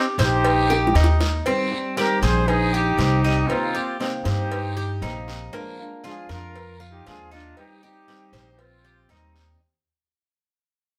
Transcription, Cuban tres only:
0.00 0.17 G4 medium
0.19 0.68 C5 medium
0.70 0.95 G4 medium
0.96 1.45 D#4 medium
1.46 1.96 C4 medium
1.98 2.22 G4 medium
2.23 2.72 C5 medium
2.74 3.23 G4 medium
3.24 3.74 D#4 medium
3.75 4.24 G4 medium
4.25 4.75 C5 medium
4.77 5.02 G4 medium
5.02 5.52 D#4 medium
5.53 6.02 A#3 medium
6.04 6.29 F4 medium
6.29 6.79 A#4 medium
6.80 7.30 F4 medium
7.31 7.81 D#4 medium
7.83 8.32 G4 medium
8.33 8.82 C5 medium
8.85 9.09 G4 medium
9.10 9.59 D#4 medium

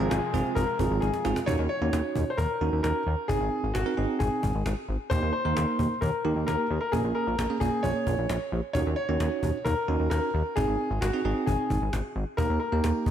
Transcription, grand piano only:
0.00 0.12 A#4 loud
0.10 0.57 G#4 medium
0.55 1.03 A#4 medium
1.01 1.33 G#4 medium
1.46 1.52 C#5 loud
1.69 2.33 C#5 loud
2.30 2.38 C5 medium
2.37 2.81 A#4 loud
2.83 3.26 A#4 medium
3.28 3.71 G#4 medium
3.74 4.21 F#4 medium
4.19 4.84 G#4 medium
5.10 5.31 C5 medium
5.33 5.98 C5 medium
6.01 6.45 A#4 medium
6.47 6.79 A#4 medium
6.81 6.93 A#4 medium
6.92 6.97 G#4 medium
7.15 7.62 A#4 medium
7.60 7.84 G#4 medium
7.83 8.48 C#5 loud
8.73 8.79 C#5 loud
8.96 9.67 C#5 loud
9.65 10.07 A#4 medium
10.10 10.57 A#4 medium
10.56 10.98 G#4 medium
11.01 11.48 F#4 medium
11.46 12.11 G#4 medium
12.37 12.58 A#4 medium
12.60 13.11 A#4 medium

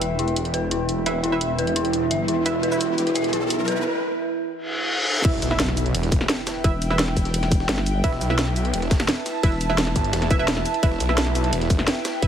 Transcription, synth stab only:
1.06 1.14 E4 medium
1.06 1.14 B4 medium
1.06 1.14 E5 loud
1.32 1.44 E4 medium
1.32 1.44 B4 medium
1.32 1.44 E5 loud
2.46 2.53 E4 medium
2.46 2.53 B4 medium
2.46 2.53 E5 loud
2.72 2.84 E4 medium
2.72 2.84 B4 medium
2.72 2.84 E5 loud
5.25 5.32 E4 loud
5.25 5.32 B4 medium
5.25 5.32 E5 loud
5.51 5.63 E4 medium
5.51 5.63 B4 medium
5.51 5.63 E5 loud
6.64 6.72 E4 medium
6.64 6.72 B4 medium
6.64 6.72 E5 loud
6.90 7.02 E4 medium
6.90 7.02 B4 medium
6.90 7.02 E5 loud
8.04 8.11 E4 loud
8.04 8.11 B4 medium
8.04 8.11 E5 loud
8.30 8.42 E4 loud
8.30 8.42 B4 medium
8.30 8.42 E5 loud
9.43 9.51 E4 loud
9.43 9.51 B4 medium
9.43 9.51 E5 loud
9.70 9.82 E4 medium
9.70 9.82 B4 medium
9.70 9.82 E5 loud
10.31 10.37 E4 medium
10.31 10.37 B4 medium
10.31 10.37 E5 loud
10.39 10.81 E4 loud
10.39 10.81 B4 medium
10.39 10.81 E5 loud
10.83 10.90 E4 medium
10.83 10.90 B4 medium
10.83 10.90 E5 loud
11.09 11.21 E4 medium
11.09 11.21 B4 medium
11.09 11.21 E5 loud
12.22 12.28 E4 medium
12.22 12.28 B4 medium
12.22 12.28 E5 loud

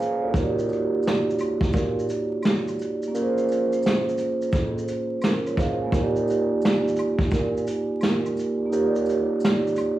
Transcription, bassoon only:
0.00 0.21 C#2 medium
0.22 0.34 D2 medium
0.35 1.00 D#2 loud
1.74 2.06 A#2 medium
3.14 3.79 A#2 loud
4.53 4.86 F2 medium
5.58 5.78 G#2 loud
5.93 6.58 D#2 loud
7.32 7.65 A#2 medium
8.72 9.37 D#2 loud

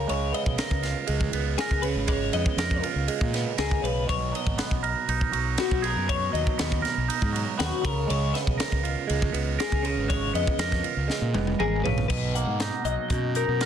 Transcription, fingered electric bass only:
0.10 0.32 C#2 medium
0.46 0.58 B1 medium
0.71 0.93 C#2 loud
1.09 1.31 C#2 loud
1.33 1.56 C#2 medium
1.71 1.93 C#2 loud
1.95 2.29 G#1 medium
2.33 2.45 F2 medium
2.57 2.80 F2 medium
2.96 3.07 C#2 medium
3.21 3.44 A#2 medium
3.58 3.81 C#2 medium
3.83 4.06 B1 medium
4.10 4.32 B1 medium
4.46 4.58 G#1 medium
4.71 4.94 B1 loud
5.08 5.31 B1 medium
5.34 5.56 B1 medium
5.71 5.94 B1 medium
5.96 6.30 F#2 medium
6.34 6.45 D#2 medium
6.60 6.82 D#2 medium
6.97 7.08 B1 medium
7.22 7.44 G#2 loud
7.60 7.71 D#2 medium
7.85 8.07 C#2 medium
8.10 8.32 C#2 medium
8.47 8.58 B1 medium
8.72 8.94 C#2 medium
9.10 9.32 C#2 loud
9.34 9.57 C#2 medium
9.72 9.94 C#2 medium
9.97 10.30 G#1 medium
10.34 10.45 F2 medium
10.58 10.81 F2 medium
10.97 11.08 C#2 medium
11.22 11.33 A#2 medium
11.34 11.57 F1 medium
11.60 11.82 G#1 medium
11.84 12.07 A#1 medium
12.10 12.43 B1 medium
12.46 12.69 G#2 medium
12.84 12.96 B1 medium
13.10 13.43 B2 medium
13.48 13.66 B2 medium

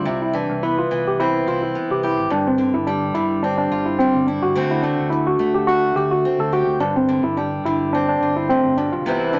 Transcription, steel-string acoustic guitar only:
0.00 0.63 G3 medium
0.00 0.66 C4 medium
0.00 1.46 E4 medium
0.05 0.34 C3 medium
0.33 0.90 E3 medium
0.63 1.74 B3 medium
0.91 2.28 E3 medium
1.20 2.61 C4 medium
1.48 2.03 E4 medium
1.75 2.28 B3 medium
2.03 2.28 G4 medium
2.30 4.52 G2 medium
2.58 3.14 D3 medium
2.87 3.99 G3 medium
3.15 4.54 D3 medium
3.44 4.56 C4 medium
3.72 4.28 F4 medium
4.00 4.56 G3 medium
4.28 4.56 E4 medium
4.55 7.07 D3 medium
4.55 4.82 A3 medium
4.55 5.12 C4 medium
4.55 5.67 F#4 medium
4.83 5.38 A3 medium
5.12 muted steel-string acoustic guitar stroke medium
5.39 6.77 A3 medium
5.68 5.96 F#4 medium
5.97 6.52 F#4 medium
6.25 7.12 C4 medium
6.53 6.78 G4 medium
6.80 9.02 G2 medium
7.09 7.65 D3 medium
7.37 9.07 G3 medium
7.66 9.06 D3 medium
7.95 9.08 C4 medium
8.22 9.03 F4 medium
8.50 8.77 A2 medium
8.78 9.05 B2 medium
9.06 9.34 C3 medium
9.06 9.32 E3 medium
9.06 9.39 B3 medium
9.06 9.39 C4 medium
9.06 9.39 E4 medium
9.33 9.39 E3 medium

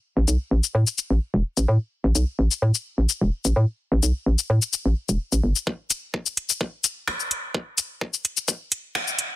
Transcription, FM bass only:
0.17 0.25 A1 medium
0.28 0.37 B1 medium
0.51 0.61 A1 medium
0.75 0.84 A2 medium
1.10 1.19 A1 medium
1.34 1.42 E1 medium
1.57 1.66 A1 medium
1.68 1.78 A2 medium
2.04 2.13 A1 medium
2.15 2.25 B1 medium
2.39 2.48 A1 medium
2.62 2.72 A2 medium
2.98 3.06 A1 medium
3.21 3.30 E1 medium
3.45 3.53 A1 medium
3.56 3.65 A2 medium
3.92 4.00 A1 medium
4.03 4.12 B1 medium
4.26 4.36 A1 medium
4.50 4.59 A2 medium
4.86 4.94 A1 medium
5.09 5.17 E1 medium
5.32 5.41 A1 medium
5.44 5.53 G1 medium

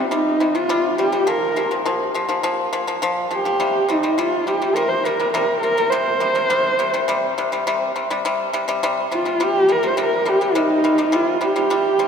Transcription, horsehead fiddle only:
0.00 0.12 C4 medium
0.13 0.56 D#4 medium
0.55 0.98 F4 loud
0.99 1.31 G4 medium
1.29 1.87 A#4 medium
3.33 3.92 G4 medium
3.91 4.20 D#4 medium
4.18 4.48 F4 medium
4.46 4.77 G4 medium
4.75 4.90 A#4 medium
4.88 5.05 C5 medium
5.04 5.33 A#4 medium
5.33 5.61 A#4 medium
5.61 5.91 A#4 loud
5.90 7.65 C5 medium
9.13 9.44 F4 medium
9.42 9.73 G4 loud
9.72 9.88 A#4 medium
9.87 10.00 C5 medium
10.02 10.30 A#4 medium
10.29 10.58 G4 medium
10.56 11.17 D#4 medium
11.15 11.44 F4 medium
11.43 12.08 G4 medium

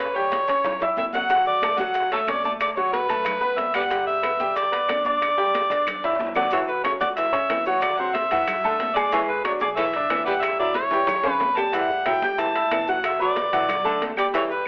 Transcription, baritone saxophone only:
6.52 6.69 E3 loud
6.84 7.02 F#3 medium
7.18 7.35 E3 medium
7.50 7.76 E3 medium
7.99 8.16 F#3 medium
8.32 8.49 E3 medium
8.65 8.91 D3 medium
9.13 9.30 E3 medium
9.44 9.61 F#3 medium
9.77 9.95 E3 medium
10.10 10.36 E3 medium
10.59 10.76 F#3 medium
10.91 11.08 E3 medium
11.23 11.50 C#3 medium
11.74 11.91 E3 medium
12.07 12.24 F#3 medium
12.38 12.55 E3 medium
12.71 12.98 E3 medium
13.21 13.38 F#3 medium
13.52 13.70 E3 medium
13.85 14.11 D3 medium
14.34 14.51 E3 medium

